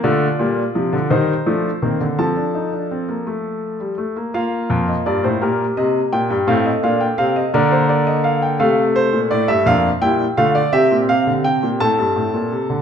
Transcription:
<<
  \new Staff \with { instrumentName = "Grand piano" } { \time 6/8 \key f \mixolydian \tempo 4. = 56 << { d''4. c''4. | a''2~ a''8 r8 | f''8. ees''16 d''16 c''16 bes'8 ees''8 g''8 | f''16 ees''16 f''16 g''16 f''16 ees''16 d''16 c''16 d''16 ees''16 f''16 g''16 |
f''8 c''8 d''16 e''16 f''8 g''8 f''16 d''16 | e''8 f''8 g''8 a''4. | } \\ { f'4. ees'8 d'8 c'8 | a'2~ a'8 r8 | f'4. g'4. | a'4. bes'4. |
a'4. d'8 e'8 f'8 | g'4. a'4. | } >> }
  \new Staff \with { instrumentName = "Grand piano" } { \clef bass \time 6/8 \key f \mixolydian << { a8 g8 f8 g8 a8 bes8 | c'16 d'16 ees'16 d'16 c'16 bes16 a8. g16 a16 bes16 | bes2. | c'8 d'8 c'8 bes4. |
a4. bes8 g8 a8 | c'2. | } \\ { d8 bes,8 c16 d16 ees8 f8 ees16 d16 | f2~ f8 r8 | r8 f,8 g,16 a,16 bes,8 c8 bes,16 g,16 | a,8 bes,8 c8 d4. |
c8. bes,16 a,16 g,16 f,8 bes,8 d8 | c16 bes,16 c16 d16 c16 bes,16 a,16 g,16 a,16 bes,16 c16 d16 | } >> }
>>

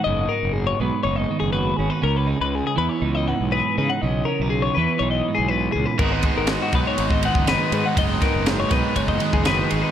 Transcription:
<<
  \new Staff \with { instrumentName = "Clean electric guitar" } { \time 4/4 \key gis \minor \tempo 4 = 121 dis''8 ais'8 gis'16 cis''16 b'8 cis''16 dis''8 gis'16 b'8 gis'16 b'16 | ais'16 b'16 gis'16 b'16 gis'16 gis'16 b'16 cis''8 dis''16 fis''8 b'8 b'16 fis''16 | dis''8 ais'8 gis'16 cis''16 b'8 cis''16 dis''8 gis'16 b'8 gis'16 b'16 | ais'16 b'16 gis'16 ais'16 fis'16 fis'16 b'16 cis''8 dis''16 fis''8 b'8 b'16 fis''16 |
dis''8 ais'8 gis'16 cis''16 b'8 cis''16 dis''8 gis'16 b'8 gis'16 b'16 | }
  \new Staff \with { instrumentName = "Clean electric guitar" } { \time 4/4 \key gis \minor << { fis'8 dis'4 b8 dis'4 fis'8 cis'16 dis'16 | r8 dis'4 b8 dis'4 gis'8 dis'8 | r8 cis'16 dis'8. b8 dis'2 | <gis b dis' fis'>8 dis'4 b8 dis'4 fis'8 dis'8 |
r8 dis'4 b8 dis'4 fis'8 dis'8 | } \\ { gis,4. gis4 dis4. | cis4. e4 gis,4. | cis4. e4 gis,8 b,8 ais,8 | gis,4. gis4 dis4. |
gis,4. gis4 dis4. | } >> }
  \new Staff \with { instrumentName = "Overdriven electric guitar" } { \time 4/4 \key gis \minor r1 | r1 | r1 | <gis, dis gis b dis'>8 <gis b dis'>8 <gis, dis gis b dis'>8 <gis b dis'>4 <gis b dis'>8 <dis gis b dis'>4 |
<gis, dis gis b dis'>8 <gis b dis'>8 <gis, dis gis b dis'>8 <gis b dis'>4 <gis b dis'>8 <dis gis b dis'>4 | }
  \new Staff \with { instrumentName = "Fingered electric bass" } { \clef bass \time 4/4 \key gis \minor fis,,8 r16 fis,,8. b,,16 r16 fis,,8 r16 fis,,8. gis,,16 r16 | cis,8. cis,8 r16 e,16 r16 cis,8. b,,8 r16 cis16 r16 | b,,8 r16 b,,8. e,16 r16 b,,8 r16 b,,8. cis,16 r16 | gis,,8. gis,,8 r16 b,,16 r16 gis,,8. fis,,8 r16 gis,16 r16 |
fis,,8 r16 fis,,8. b,,16 r16 fis,,8 r16 fis,,8. gis,,16 r16 | }
  \new DrumStaff \with { instrumentName = "Drums" } \drummode { \time 4/4 r4 r4 r4 r4 | r4 r4 r4 r4 | r4 r4 r4 r4 | <cymc bd>8 <bd cymr>8 <cymr sn>8 <bd cymr>8 cymr16 bd16 cymr16 bd16 <cymr sn>8 cymr8 |
<bd cymr>8 <bd cymr sn>8 <cymr sn>8 <bd cymr sn>8 <bd cymr>16 bd16 cymr16 bd16 <cymr sn>8 cymr8 | }
>>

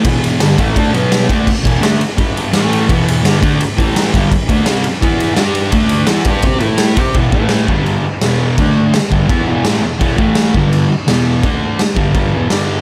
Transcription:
<<
  \new Staff \with { instrumentName = "Distorted electric guitar" } { \clef bass \time 4/4 \key e \minor \tempo 4 = 168 <e, b, e>4 <g, d g>8 <a, e a>8 <d a d'>8 <b, fis b>4 <d a d'>8 | r8 <e, b, e>8 <d a d'>8 r8 <g, d g>4 <a, e a>4 | <e, b, e>4 <g, d g>8 <d a d'>8 r8 <a, e a>4 <g, d g>8 | r8 <d a d'>8 <c g c'>8 r8 <e b e'>4 <g d' g'>4 |
<d a d'>4 <e b e'>8 <g d' g'>8 <c' g' c''>8 <a e' a'>4 <c' g' c''>8 | <e, b, e>8 <a, e a>4 <g, d g>4 r8 <e, b, e>4 | <d a d'>4 r8 <g, d g>8 <e b e'>8 <e, b, e>8 <a, e a>8 <e, b,>8 | <e, b, e>8 <a, e a>4 <g, d g>4 r8 <e, b, e>4 |
<d a d'>4 r8 <g, d g>8 <g, d g>8 <e, b, e>8 <g, d g>4 | }
  \new DrumStaff \with { instrumentName = "Drums" } \drummode { \time 4/4 <bd cymr>8 cymr8 <cymr sn>8 <bd cymr>8 <bd cymr>8 cymr8 <cymr sn>8 <bd cymr>8 | <cymc bd>8 <bd cymr>8 <cymr sn>8 cymr8 <bd cymr>8 cymr8 <cymr sn>8 cymr8 | <bd cymr>8 cymr8 <cymr sn>8 <bd cymr>8 cymr8 <bd cymr>8 <cymr sn>8 <bd cymr>8 | <bd cymr>8 <bd cymr>8 <cymr sn>8 cymr8 <bd cymr>8 cymr8 <cymr sn>8 cymr8 |
<bd cymr>8 cymr8 <cymr sn>8 <bd cymr>8 <bd cymr>8 cymr8 <cymr sn>8 <bd cymr>8 | <cymc bd>8 bd8 <cymc sn>8 bd8 cymc4 <cymc sn>4 | <cymc bd>4 <cymc sn>8 bd8 <cymc bd>4 <cymc sn>4 | <cymc bd>8 bd8 <cymc sn>8 bd8 cymc4 <cymc sn>4 |
<cymc bd>4 <cymc sn>8 bd8 <cymc bd>4 <cymc sn>4 | }
>>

